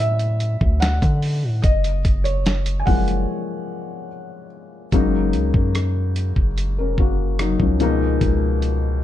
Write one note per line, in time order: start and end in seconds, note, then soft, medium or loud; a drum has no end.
0.00 0.57 A2 loud
0.00 1.65 F#3 medium
0.00 1.66 C#4 medium
0.00 1.65 E4 medium
0.00 0.77 E5 medium
0.00 0.80 F#5 loud
0.00 closed hi-hat medium
0.19 closed hi-hat medium
0.40 closed hi-hat medium
0.61 1.00 D2 loud
0.61 kick medium
0.80 1.65 F#5 medium
0.80 snare loud
0.80 closed hi-hat medium
1.02 1.45 D3 loud
1.02 kick medium
1.02 closed hi-hat medium
1.22 open hi-hat medium
1.43 1.63 A2 loud
1.62 2.03 F#1 loud
1.62 2.21 D#5 loud
1.62 kick loud
1.62 closed hi-hat medium
1.84 closed hi-hat medium
2.05 2.84 F#1 loud
2.05 kick medium
2.05 closed hi-hat medium
2.24 2.75 C#5 medium
2.24 closed hi-hat medium
2.46 snare loud
2.46 closed hi-hat medium
2.66 closed hi-hat medium
2.80 2.87 G#5 medium
2.86 3.26 F#1 loud
2.86 4.07 F3 medium
2.86 4.06 G#3 medium
2.86 4.07 A#3 soft
2.86 4.47 F#5 medium
2.86 kick medium
2.86 open hi-hat medium
3.08 closed hi-hat medium
4.92 5.35 F#1 loud
4.92 6.47 C#3 medium
4.92 6.47 F#3 medium
4.92 6.47 G#3 medium
4.92 6.48 A#3 medium
4.92 6.48 D#4 medium
4.92 kick loud
4.92 closed hi-hat medium
5.33 5.53 C#2 loud
5.33 closed hi-hat medium
5.54 6.33 F#2 loud
5.54 kick medium
5.75 cross-stick medium
5.75 closed hi-hat medium
6.16 closed hi-hat medium
6.36 6.79 F#1 loud
6.36 kick medium
6.58 closed hi-hat medium
6.78 6.97 F1 loud
6.78 6.98 C#4 soft
6.78 6.97 A#4 medium
6.98 7.57 F#1 loud
6.98 7.38 A#3 medium
6.98 7.38 F#4 medium
6.98 kick loud
7.39 7.59 F#3 medium
7.39 7.59 D#4 medium
7.39 cross-stick loud
7.39 closed hi-hat medium
7.60 8.19 C#2 loud
7.60 7.79 F3 soft
7.60 7.99 C#4 medium
7.60 kick medium
7.80 9.04 B2 medium
7.80 9.04 F3 medium
7.80 9.04 G#3 medium
7.80 9.04 A#3 medium
7.80 9.04 D#4 loud
7.80 closed hi-hat medium
8.21 9.04 C#2 loud
8.21 kick loud
8.21 closed hi-hat medium
8.62 closed hi-hat medium